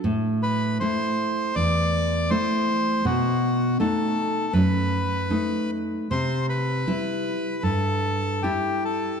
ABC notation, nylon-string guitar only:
X:1
M:4/4
L:1/8
Q:1/4=79
K:Clyd
V:1 name="Nylon-string guitar"
A,,2 [A,E]2 E,,2 [A,E]2 | B,,2 [A,^D]2 F,,2 [A,D]2 | C,2 [G,E]2 G,,2 [G,E]2 |]